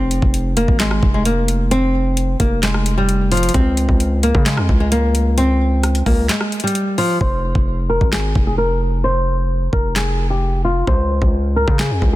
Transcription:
Already playing: 808-style bass F1, nylon-string guitar C4
0.11 closed hi-hat
0.22 808-style bass F1, kick
0.34 closed hi-hat
0.57 nylon-string guitar A#3, closed hi-hat
0.68 808-style bass G#1, kick
0.80 nylon-string guitar G#3, snare, clap, closed hi-hat
0.91 cross-stick
1.03 808-style bass F1, kick
1.14 nylon-string guitar G#3
1.25 nylon-string guitar A#3, closed hi-hat
1.48 closed hi-hat
1.71 nylon-string guitar C4, closed hi-hat
2.17 closed hi-hat
2.40 808-style bass F1, nylon-string guitar A#3, kick, closed hi-hat
2.63 nylon-string guitar G#3, snare, clap, closed hi-hat
2.74 cross-stick
2.86 closed hi-hat
2.98 nylon-string guitar G3
3.09 closed hi-hat
3.32 nylon-string guitar F3, closed hi-hat, open hi-hat
3.37 closed hi-hat
3.43 closed hi-hat
3.49 closed hi-hat
3.54 808-style bass C#2, nylon-string guitar C4, kick, closed hi-hat
3.77 closed hi-hat
3.89 808-style bass C#2, kick
4.00 closed hi-hat
4.23 nylon-string guitar A#3, closed hi-hat
4.35 808-style bass C#3, kick
4.46 nylon-string guitar G#3, snare, clap, closed hi-hat
4.57 808-style bass F2, cross-stick
4.69 808-style bass C#2, kick
4.80 nylon-string guitar G#3
4.92 nylon-string guitar A#3, closed hi-hat
5.15 closed hi-hat
5.38 nylon-string guitar C4, closed hi-hat
5.83 cross-stick, closed hi-hat
5.95 closed hi-hat
6.06 808-style bass C#2, nylon-string guitar A#3, kick, open hi-hat
6.29 nylon-string guitar G#3, snare, clap, closed hi-hat
6.41 cross-stick
6.52 closed hi-hat
6.60 nylon-string guitar G3, closed hi-hat
6.67 closed hi-hat
6.75 closed hi-hat
6.98 nylon-string guitar F3, open hi-hat
7.21 808-style bass F1, nylon-string guitar C5, kick
7.55 808-style bass F1, kick
7.89 nylon-string guitar A#4
8.01 808-style bass G#1, kick
8.12 nylon-string guitar G#4, snare, clap
8.35 808-style bass F1, kick
8.47 nylon-string guitar G#4
8.58 nylon-string guitar A#4
9.04 nylon-string guitar C5
9.73 808-style bass F1, nylon-string guitar A#4, kick
9.96 nylon-string guitar G#4, snare, clap
10.30 nylon-string guitar G4
10.65 nylon-string guitar F4
10.87 808-style bass C#2, nylon-string guitar C5, kick
11.22 808-style bass C#2, kick
11.56 nylon-string guitar A#4
11.68 808-style bass C#3, kick
11.79 nylon-string guitar G#4, snare, clap
11.91 808-style bass F2
12.02 808-style bass C#2, kick

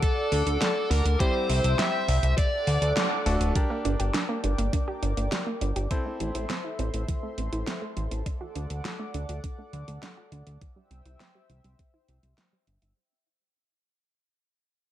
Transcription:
Already playing: electric grand piano A3 D4 F#4 A4, analog synth pad A4 D5 F#5 D6
0.03 lead electric guitar A4, kick, closed hi-hat
0.32 analog synth bass D2, open hi-hat
0.47 analog synth bass D2, closed hi-hat
0.62 lead electric guitar A4, snare, closed hi-hat
0.91 analog synth bass D2, lead electric guitar A#4, open hi-hat
1.05 analog synth bass D2, closed hi-hat
1.20 electric grand piano G3 C4 E4 G4, lead electric guitar C5, analog synth pad C5 E5 G5 E6, kick, closed hi-hat
1.50 analog synth bass C2, open hi-hat
1.64 analog synth bass C2, closed hi-hat
1.79 lead electric guitar E5, snare, closed hi-hat
2.08 analog synth bass C2, open hi-hat
2.23 analog synth bass C2, closed hi-hat
2.38 analog synth pad A4 D5 F#5 D6, lead electric guitar D5, kick, closed hi-hat
2.67 analog synth bass D2, open hi-hat
2.82 analog synth bass D2, closed hi-hat
2.97 snare, closed hi-hat
3.26 analog synth bass D1, electric grand piano A3 D4 F#4 A4, open hi-hat
3.41 analog synth bass D1, closed hi-hat
3.55 synth arpeggio sound G3, electric grand piano D4 G4 A#4 D5, analog synth pad A#4 D5 G5 D6, kick, closed hi-hat
3.70 synth arpeggio sound A#3
3.85 analog synth bass G1, synth arpeggio sound D4, closed hi-hat
3.99 analog synth bass G1, synth arpeggio sound G4, closed hi-hat
4.14 synth arpeggio sound D4, snare, closed hi-hat
4.29 synth arpeggio sound A#3
4.44 analog synth bass G1, synth arpeggio sound G3, closed hi-hat
4.58 analog synth bass G1, synth arpeggio sound A#3, closed hi-hat
4.73 synth arpeggio sound D4, kick, closed hi-hat
4.88 synth arpeggio sound G4
5.03 analog synth bass G1, synth arpeggio sound D4, closed hi-hat
5.17 analog synth bass G1, synth arpeggio sound A#3, closed hi-hat
5.32 synth arpeggio sound G3, snare, closed hi-hat
5.47 synth arpeggio sound A#3
5.61 analog synth bass G1, synth arpeggio sound D4, closed hi-hat
5.76 analog synth bass G1, synth arpeggio sound G4, closed hi-hat
5.91 electric grand piano C4 E4 A4 C5, synth arpeggio sound C4, analog synth pad A4 C5 E5 C6, kick, closed hi-hat
6.06 synth arpeggio sound A3
6.20 analog synth bass A1, synth arpeggio sound E3, closed hi-hat
6.35 analog synth bass A1, synth arpeggio sound A3, closed hi-hat
6.50 synth arpeggio sound C4, snare, closed hi-hat
6.64 synth arpeggio sound E4
6.79 analog synth bass A1, synth arpeggio sound C4, closed hi-hat
6.94 analog synth bass A1, synth arpeggio sound A3, closed hi-hat
7.08 synth arpeggio sound E3, kick, closed hi-hat
7.23 synth arpeggio sound A3
7.38 analog synth bass A1, synth arpeggio sound C4, closed hi-hat
7.52 analog synth bass A1, synth arpeggio sound E4, closed hi-hat
7.67 synth arpeggio sound C4, snare, closed hi-hat
7.82 synth arpeggio sound A3
7.97 analog synth bass A1, synth arpeggio sound E3, closed hi-hat
8.11 analog synth bass A1, synth arpeggio sound A3, closed hi-hat
8.26 synth arpeggio sound D4, analog synth pad D5 F#5 D6, kick, closed hi-hat
8.41 synth arpeggio sound F#4
8.55 analog synth bass D2, synth arpeggio sound D4, closed hi-hat
8.70 analog synth bass D2, synth arpeggio sound A3, closed hi-hat
8.85 synth arpeggio sound F#3, snare, closed hi-hat
8.99 synth arpeggio sound A3
9.14 analog synth bass D2, synth arpeggio sound D4, closed hi-hat
9.29 analog synth bass D2, synth arpeggio sound F#4, closed hi-hat
9.44 synth arpeggio sound D4, kick, closed hi-hat
9.58 synth arpeggio sound A3
9.73 analog synth bass D2, synth arpeggio sound F#3, closed hi-hat
9.88 analog synth bass D2, synth arpeggio sound A3, closed hi-hat
10.03 synth arpeggio sound D4, snare, closed hi-hat
10.17 synth arpeggio sound F#4
10.32 analog synth bass D2, synth arpeggio sound D4, closed hi-hat
10.47 analog synth bass D2, synth arpeggio sound A3, closed hi-hat
10.61 synth arpeggio sound E3, analog synth pad C5 E5 G5 E6, kick, closed hi-hat
10.76 synth arpeggio sound G3
10.91 analog synth bass C2, synth arpeggio sound C4, closed hi-hat
11.06 analog synth bass C2, synth arpeggio sound E4, closed hi-hat
11.20 synth arpeggio sound C4, snare, closed hi-hat
11.35 synth arpeggio sound G3
11.50 analog synth bass C2, synth arpeggio sound E3, closed hi-hat
11.64 analog synth bass C2, synth arpeggio sound G3, closed hi-hat
11.79 synth arpeggio sound C4, kick, closed hi-hat
11.94 synth arpeggio sound E4
12.08 analog synth bass C2, synth arpeggio sound C4, closed hi-hat
12.23 analog synth bass C2, synth arpeggio sound G3, closed hi-hat
12.38 synth arpeggio sound E3, snare, closed hi-hat
12.53 synth arpeggio sound G3
12.67 analog synth bass G1, synth arpeggio sound C4, closed hi-hat
12.82 analog synth bass G1, synth arpeggio sound E4, closed hi-hat

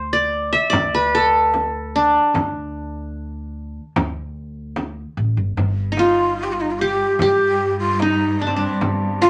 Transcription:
Already playing: upright bass D2, qanun C5
0.13 qanun D5
0.53 qanun E5
0.70 upright bass D2, qanun D5, frame drum
0.94 qanun B4
1.15 qanun A4
1.54 frame drum
1.96 qanun D4
2.34 upright bass D2, frame drum
3.96 upright bass D2, frame drum
4.76 frame drum
5.17 upright bass A1
5.37 upright bass G1
5.57 upright bass G1, cello section G2, frame drum
5.92 qanun D#4
5.97 ney F4, qanun F4, frame drum
6.43 ney G4
6.53 ney F4
6.61 ney D#4
6.71 ney F4
6.79 ney G4, qanun G4
7.19 upright bass G2, ney G4, qanun G4, frame drum
7.80 ney F4
8.00 ney D#4, qanun D#4, frame drum
8.40 ney D4, qanun D4
8.47 qanun C4
8.55 ney D4, qanun D4
8.81 upright bass G1, frame drum
9.22 ney F4, qanun F4, frame drum

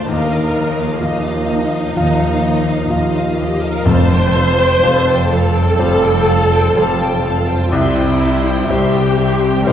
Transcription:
Already playing: harp D3 A3 D4 F4 F5, grand piano A3 F4 F5, violin section A5
0.07 cello section D#2, grand piano D#2, double bass section D#2, harp D#3, viola section A#4, violin section D#5 F5
0.31 harp D#4, violin section D#5 F5
0.54 harp F3, violin section D#5 F5
0.79 harp F4, violin section D#5 F5
1.01 cello section D#2, double bass section D#2, grand piano F3 F4 F5, viola section D#4, violin section D#5 F5, harp F5
1.26 harp F4, violin section D#5 F5
1.48 harp F3, violin section D#5 F5
1.73 harp D#4, violin section D#5 F5
1.96 double bass section D#2, cello section D#2, harp D#3, grand piano F3 F4 F5, violin section D#5 F5
2.20 harp F3, violin section D#5 F5
2.43 harp D#4, violin section D#5 F5
2.67 harp F4, violin section D#5 F5
2.89 cello section D#2, double bass section D#2, grand piano F3 F4 F5, violin section D#5, harp F5
2.94 violin section F5
3.13 harp F4, violin section D#5 F5
3.37 harp F3, viola section G4, violin section D#5 F5
3.61 harp D#4, viola section A#4, violin section D#5 F5
3.85 double bass section F1, grand piano F2, cello section F2, timpani F2, harp F3, violin section A4 F5 A5, viola section C5
4.11 harp G3, violin section C5 G5 A5
4.34 harp F4, violin section A4 F5 A5
4.59 harp C5, violin section C5 G5 A5
4.80 double bass section F1, cello section F2, grand piano G3 F4 C5, harp G4, violin section A4 F5 A5
5.06 harp C5, violin section C5 G5 A5
5.29 harp F4, viola section A4, violin section A4 F5 A5
5.54 harp G3, violin section C5 G5 A5
5.77 double bass section F1, cello section F2, harp F3, grand piano G3 F4 C5, violin section A4 F5 A5
6.02 harp F4, violin section C5 G5 A5
6.27 harp G3, violin section A4 F5 A5
6.51 harp C5, violin section C5 G5 A5
6.73 double bass section F1, cello section F2, grand piano G3 F4, harp G4, violin section A4 F5 A5
6.77 grand piano C5
7.00 harp C5, violin section C5 G5 A5
7.23 harp F4, violin section A4 F5 A5, viola section A4
7.47 harp G3, viola section F4, violin section C5 G5 A5
7.70 cello section C2, double bass section C2, grand piano C2, harp C3, viola section E4, violin section G4 E5 C6
7.96 harp C4, violin section C5 G5
8.20 harp G3, violin section G4 E5 C6
8.44 harp E4, violin section C5 G5
8.68 cello section C2, double bass section C2, grand piano G3 E4 C5, viola section G4, violin section G4 E5, harp C5
8.72 violin section C6
8.94 harp E4, violin section C5 G5
9.17 harp G3, violin section G4 E5 C6
9.42 harp C4, violin section C5 G5
9.65 cello section C2, double bass section C2, harp C3, grand piano G3 E4 C5, violin section G4 E5 C6, viola section A#4

